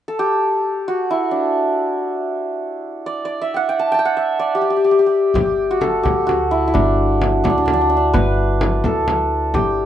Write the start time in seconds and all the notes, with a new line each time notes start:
0.08 A4
0.19 G4
0.88 F#4
1.11 E4
1.31 D4
3.06 D5
3.25 D5
3.41 E5
3.54 F#5 G5
3.69 G5
3.79 A5
3.92 G5 A5
3.99 G5
4.05 F#5
4.17 E5
4.39 D5
4.55 G4
4.62 G4
4.70 G4
4.77 G4
4.84 G4
4.91 G4
4.99 G4
5.06 G4
5.34 G1 G4, frame drum
5.71 F#4
5.81 A4, frame drum
6.03 D2 G4, frame drum
6.27 F#4, frame drum
6.51 E4
6.68 E4
6.74 G1 D4, frame drum
7.22 frame drum
7.44 D2 D4, frame drum
7.50 D4
7.58 D4
7.66 D4, frame drum
7.73 D4
7.81 D4
7.90 D4
7.97 D4
8.13 G1 B4, frame drum
8.61 frame drum
8.84 D2 A4, frame drum
9.08 frame drum
9.54 G1 G4, frame drum